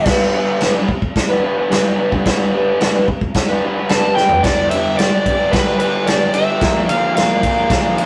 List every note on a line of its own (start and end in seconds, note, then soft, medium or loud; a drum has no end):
0.06 0.32 G3 medium
0.06 0.34 B3 medium
0.06 0.34 D4 medium
0.06 kick loud
0.06 snare loud
0.06 crash loud
0.06 crash medium
0.10 0.35 B4 loud
0.33 0.61 G3 medium
0.33 0.63 B3 medium
0.33 0.62 D4 medium
0.33 0.64 B4 medium
0.61 0.89 G3 loud
0.61 0.77 B3 loud
0.61 0.79 D4 medium
0.61 0.76 B4 loud
0.61 snare loud
0.61 crash medium
0.76 0.89 B3 medium
0.76 0.89 D4 medium
0.76 0.89 B4 medium
0.89 muted overdriven electric guitar stroke soft
0.89 kick medium
1.02 kick medium
1.16 kick medium
1.16 snare loud
1.16 crash medium
1.29 1.44 B3 medium
1.29 1.43 D4 medium
1.29 1.44 B4 medium
1.42 1.69 G3 medium
1.42 1.58 B3 medium
1.42 1.60 D4 medium
1.42 1.56 B4 medium
1.57 1.72 B3 medium
1.57 1.70 D4 medium
1.57 1.72 B4 medium
1.70 1.96 G3 loud
1.70 1.85 B3 loud
1.70 1.88 D4 loud
1.70 1.84 B4 loud
1.70 snare loud
1.70 crash medium
1.85 1.99 B3 medium
1.85 1.98 D4 medium
1.85 2.00 B4 medium
1.96 2.24 G3 medium
1.96 2.13 B3 medium
1.96 2.14 D4 medium
1.96 2.11 B4 medium
2.12 2.26 B3 medium
2.12 2.25 D4 medium
2.12 2.27 B4 medium
2.12 kick medium
2.25 2.53 G3 medium
2.25 2.55 B3 medium
2.25 2.53 D4 medium
2.25 2.56 B4 medium
2.25 kick loud
2.25 snare loud
2.25 crash medium
2.54 2.79 G3 medium
2.54 2.80 B3 medium
2.54 2.79 D4 medium
2.54 2.82 B4 medium
2.80 3.07 G3 medium
2.80 2.95 B3 loud
2.80 2.96 D4 medium
2.80 2.94 B4 loud
2.80 snare loud
2.80 crash medium
2.95 3.07 B3 medium
2.95 3.07 D4 medium
2.95 3.07 B4 medium
3.08 muted overdriven electric guitar stroke soft
3.08 kick medium
3.21 kick medium
3.34 kick loud
3.34 snare loud
3.34 crash medium
3.48 3.64 B3 medium
3.48 3.64 D4 medium
3.48 3.65 B4 medium
3.64 3.88 G3 medium
3.64 3.78 B3 medium
3.64 3.78 D4 medium
3.64 3.76 B4 medium
3.77 3.91 B3 medium
3.77 3.90 D4 medium
3.77 3.92 B4 medium
3.89 4.18 G3 loud
3.89 4.04 B3 loud
3.89 4.06 D4 loud
3.89 4.15 A5 loud
3.89 snare loud
3.89 crash medium
3.93 4.03 B4 loud
4.04 4.21 B3 medium
4.04 4.19 D4 medium
4.04 4.21 B4 medium
4.15 4.43 G3 medium
4.15 4.44 G5 loud
4.15 snare medium
4.20 4.34 B3 medium
4.20 4.34 D4 medium
4.20 4.31 B4 medium
4.29 4.43 B4 medium
4.29 floor tom loud
4.35 4.44 B3 medium
4.35 4.44 D4 medium
4.43 4.71 G2 medium
4.43 4.72 D3 medium
4.43 4.73 G3 medium
4.43 4.73 B3 loud
4.43 4.68 D5 loud
4.43 kick loud
4.43 snare loud
4.43 ride loud
4.47 4.75 D4 loud
4.47 4.74 G4 loud
4.71 4.97 G2 medium
4.71 4.98 D3 medium
4.71 4.98 G3 medium
4.71 4.99 B3 medium
4.71 4.97 E5 loud
4.71 ride medium
4.75 5.00 D4 medium
4.75 5.00 G4 medium
4.98 5.26 G2 medium
4.98 5.26 D3 medium
4.98 5.27 G3 medium
4.98 5.27 B3 medium
4.98 5.28 D4 medium
4.98 5.28 G4 medium
4.98 5.54 D5 loud
4.98 snare loud
4.98 ride loud
5.26 5.52 G2 loud
5.26 5.53 D3 medium
5.26 5.53 G3 medium
5.26 5.54 B3 loud
5.26 5.56 D4 loud
5.26 5.55 G4 loud
5.26 kick medium
5.26 ride medium
5.52 5.80 G2 medium
5.52 5.81 D3 medium
5.52 5.81 G3 medium
5.52 5.81 B3 medium
5.52 5.78 B4 loud
5.52 kick loud
5.52 snare loud
5.52 ride loud
5.56 5.83 D4 medium
5.56 5.82 G4 loud
5.80 6.06 G2 medium
5.80 6.07 D3 medium
5.80 6.08 G3 loud
5.80 6.08 B3 loud
5.80 6.09 D4 medium
5.80 6.09 G4 loud
5.80 6.07 B4 medium
5.80 ride medium
6.07 6.33 G2 medium
6.07 6.33 D3 medium
6.07 6.34 G3 loud
6.07 6.34 B3 loud
6.07 6.35 D4 loud
6.07 6.34 D5 loud
6.07 snare loud
6.07 ride loud
6.11 6.35 G4 loud
6.34 6.60 G2 medium
6.34 6.59 D3 medium
6.34 6.60 G3 medium
6.34 6.60 B3 loud
6.34 6.62 D4 medium
6.34 6.61 G4 medium
6.34 6.89 E5 loud
6.34 ride medium
6.60 6.87 A#2 medium
6.60 6.88 D3 medium
6.60 6.88 F3 loud
6.60 6.88 A#3 loud
6.60 6.91 D4 loud
6.60 6.90 A#4 loud
6.60 kick loud
6.60 snare loud
6.60 ride loud
6.88 7.13 A#2 medium
6.88 7.14 D3 medium
6.88 7.14 F3 medium
6.88 7.15 A#3 medium
6.88 7.16 D4 medium
6.88 7.16 A#4 loud
6.88 7.14 F5 medium
6.88 ride medium
7.14 7.40 A#2 medium
7.14 7.41 D3 medium
7.14 7.42 F3 medium
7.14 7.42 A#3 loud
7.14 7.43 D4 medium
7.14 7.43 A#4 loud
7.14 8.06 F5 medium
7.14 snare loud
7.14 ride loud
7.41 7.68 A#2 loud
7.41 7.69 D3 medium
7.41 7.69 F3 medium
7.41 7.70 A#3 loud
7.41 7.71 D4 medium
7.41 7.71 A#4 loud
7.41 kick medium
7.41 ride medium
7.69 7.95 A#2 medium
7.69 7.95 D3 medium
7.69 7.95 F3 medium
7.69 7.96 A#3 medium
7.69 7.97 D4 medium
7.69 7.97 A#4 medium
7.69 kick loud
7.69 snare loud
7.69 ride loud
7.96 8.06 A#2 medium
7.96 8.06 D3 loud
7.96 8.06 F3 medium
7.96 8.06 A#3 loud
7.96 8.06 D4 loud
7.96 8.06 A#4 loud
7.96 ride medium